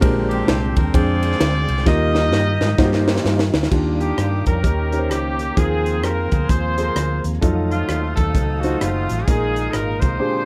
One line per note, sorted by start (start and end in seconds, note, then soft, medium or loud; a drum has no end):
0.01 0.41 A#1 loud
0.01 0.72 A#2 medium
0.01 1.85 D3 medium
0.01 0.61 G#3 medium
0.01 1.84 G#3 medium
0.01 0.61 C4 medium
0.01 1.85 C4 medium
0.01 0.61 D4 medium
0.01 0.61 G4 medium
0.01 0.61 A#4 loud
0.01 1.85 G5 medium
0.01 kick loud
0.01 ride medium
0.30 1.19 C4 medium
0.30 1.19 D4 medium
0.30 0.73 G4 medium
0.30 ride medium
0.48 0.72 C2 loud
0.48 snare loud
0.48 ride medium
0.76 0.92 D#2 medium
0.76 0.94 A#4 medium
0.76 kick medium
0.76 ride medium
0.94 1.33 F2 loud
0.94 1.54 C4 medium
0.94 1.54 D4 medium
0.94 1.83 F4 medium
0.94 1.54 G#4 medium
0.94 1.83 G#4 medium
0.94 1.54 C5 medium
0.94 1.87 D5 loud
0.94 1.54 G5 medium
0.94 kick loud
0.94 ride medium
1.23 ride medium
1.32 snare soft
1.40 1.65 D2 loud
1.40 snare loud
1.40 ride medium
1.68 1.84 C2 loud
1.68 ride medium
1.77 snare soft
1.86 2.33 D#2 loud
1.86 2.57 D#3 medium
1.86 3.69 D#3 medium
1.86 3.69 G3 medium
1.86 2.46 A#3 medium
1.86 3.69 D#4 medium
1.86 2.46 D#4 medium
1.86 2.46 F4 medium
1.86 3.69 F4 medium
1.86 2.46 G4 medium
1.86 3.21 G4 medium
1.86 2.46 A#4 medium
1.86 3.21 A#4 medium
1.86 3.25 D#5 loud
1.86 kick loud
1.86 snare medium
2.15 snare medium
2.32 2.57 G2 medium
2.32 snare medium
2.61 2.76 G#2 medium
2.61 snare medium
2.78 3.18 G2 medium
2.78 3.39 A#3 medium
2.78 3.38 D#4 medium
2.78 3.39 F4 medium
2.78 2.86 F#4 medium
2.78 3.39 C5 medium
2.78 kick loud
2.78 snare medium
2.84 3.41 G4 medium
2.93 snare medium
3.08 snare loud
3.17 snare medium
3.25 3.49 G2 loud
3.25 snare loud
3.39 snare medium
3.54 3.69 D2 medium
3.54 snare loud
3.63 snare medium
3.71 4.11 D#2 medium
3.71 4.42 D#3 medium
3.71 4.63 D#3 medium
3.71 4.63 G3 medium
3.71 4.31 A#3 medium
3.71 4.31 D4 medium
3.71 4.63 D4 medium
3.71 4.31 F4 medium
3.71 4.63 F4 medium
3.71 4.31 G4 medium
3.71 4.63 F5 medium
3.71 5.55 G5 medium
3.71 4.63 D6 medium
3.71 4.63 D#6 medium
3.71 kick medium
3.71 crash medium
4.00 4.60 A#3 medium
4.00 4.60 D4 medium
4.00 4.43 G4 medium
4.00 closed hi-hat medium
4.18 4.42 G2 medium
4.18 cross-stick medium
4.18 closed hi-hat medium
4.46 4.61 F2 medium
4.46 5.10 C#4 medium
4.46 5.11 G4 medium
4.46 5.12 A#4 medium
4.46 5.11 A#4 medium
4.46 kick medium
4.46 closed hi-hat medium
4.63 5.11 D#2 medium
4.63 5.34 D#3 medium
4.63 5.56 D#3 medium
4.63 7.39 A#3 medium
4.63 4.86 C#4 medium
4.63 5.56 C#4 medium
4.63 4.86 D#4 medium
4.63 4.86 G4 medium
4.63 5.55 G4 medium
4.63 4.86 A#4 medium
4.63 5.56 D#5 medium
4.63 7.40 A#5 medium
4.63 kick medium
4.63 closed hi-hat medium
4.92 5.35 C#4 medium
4.92 5.35 D#4 medium
4.92 5.35 G4 medium
4.92 4.97 A#4 medium
4.92 closed hi-hat medium
4.98 5.38 C5 medium
5.11 5.50 C#2 medium
5.11 5.54 A#3 medium
5.11 5.54 C#4 medium
5.11 5.59 G4 medium
5.11 5.58 G4 medium
5.11 cross-stick medium
5.11 closed hi-hat medium
5.39 closed hi-hat medium
5.56 6.03 D#2 medium
5.56 6.28 D#3 medium
5.56 7.40 F3 medium
5.56 7.40 C4 medium
5.56 6.17 C4 medium
5.56 6.46 C4 medium
5.56 6.17 F4 medium
5.56 6.32 F4 medium
5.56 7.40 G#4 medium
5.56 6.17 G#4 medium
5.56 6.05 G#4 medium
5.56 6.04 G#4 medium
5.56 6.17 A#4 medium
5.56 7.40 F5 medium
5.56 7.40 G#5 medium
5.56 7.40 C6 medium
5.56 kick medium
5.56 closed hi-hat medium
5.86 closed hi-hat medium
6.03 6.27 F2 medium
6.03 6.51 A#4 medium
6.03 6.31 A#4 medium
6.03 cross-stick loud
6.03 closed hi-hat medium
6.32 6.47 D2 medium
6.32 7.21 F4 medium
6.32 7.21 G#4 medium
6.32 7.25 C5 loud
6.32 kick medium
6.32 closed hi-hat medium
6.49 6.89 D#2 medium
6.49 7.24 C5 medium
6.49 kick medium
6.49 closed hi-hat medium
6.78 7.20 C4 medium
6.78 7.20 F4 medium
6.78 7.20 G#4 medium
6.78 6.82 A4 medium
6.78 closed hi-hat medium
6.83 7.23 A#4 medium
6.96 7.20 D2 medium
6.96 cross-stick loud
6.96 closed hi-hat medium
7.24 7.39 D#2 medium
7.24 closed hi-hat medium
7.33 cross-stick soft
7.41 7.82 F2 loud
7.41 10.17 D#3 medium
7.41 8.02 F#3 medium
7.41 9.26 F#3 medium
7.41 9.26 A3 medium
7.41 8.02 D#4 medium
7.41 8.02 F4 medium
7.41 8.02 A4 medium
7.41 9.26 D#5 medium
7.41 10.17 F5 medium
7.41 9.26 A5 medium
7.41 10.18 D#6 medium
7.41 kick medium
7.41 closed hi-hat medium
7.71 8.60 A3 medium
7.71 8.17 C4 medium
7.71 8.14 F4 medium
7.71 closed hi-hat medium
7.89 8.13 D#2 medium
7.89 cross-stick medium
7.89 closed hi-hat medium
8.15 8.32 D#2 medium
8.15 8.81 C4 medium
8.15 9.06 D#4 medium
8.15 8.62 A4 medium
8.15 8.82 A4 medium
8.15 kick medium
8.15 closed hi-hat medium
8.34 8.74 C#2 medium
8.34 kick medium
8.34 closed hi-hat medium
8.61 9.06 D#4 medium
8.61 9.06 F4 medium
8.61 8.81 F#4 medium
8.61 9.06 F#4 medium
8.61 9.06 C5 medium
8.61 closed hi-hat medium
8.79 9.05 F#1 medium
8.79 9.25 A3 medium
8.79 9.25 C4 medium
8.79 9.26 F4 medium
8.79 cross-stick loud
8.79 closed hi-hat medium
8.83 9.27 F4 medium
9.09 9.25 A1 medium
9.09 closed hi-hat medium
9.18 cross-stick soft
9.25 9.67 A#1 medium
9.25 9.98 A#2 medium
9.25 10.18 G#3 medium
9.25 10.19 A#3 medium
9.25 9.87 D#4 medium
9.25 10.16 D#4 medium
9.25 9.87 F4 medium
9.25 10.16 F4 medium
9.25 9.73 G#4 medium
9.25 9.88 G#4 medium
9.25 9.88 A#4 medium
9.25 10.19 A#5 medium
9.25 kick medium
9.25 closed hi-hat medium
9.29 9.74 G#4 medium
9.56 closed hi-hat medium
9.71 9.98 G#1 medium
9.71 10.02 A#4 medium
9.71 cross-stick medium
9.71 closed hi-hat medium
10.00 10.17 C2 medium
10.00 10.19 A#4 medium
10.00 10.45 C5 medium
10.00 kick medium
10.00 closed hi-hat medium
10.19 10.45 A#2 medium
10.19 10.45 D3 medium
10.19 10.45 G#3 medium
10.19 10.45 C4 medium
10.19 10.43 D4 medium
10.19 10.45 F4 medium
10.19 10.43 G4 medium
10.19 10.43 G#4 medium
10.19 10.45 G#4 medium
10.19 10.45 A#4 medium
10.19 10.43 C5 medium
10.19 10.45 C5 medium
10.19 10.45 G5 medium
10.19 10.45 C6 medium
10.19 10.45 D6 medium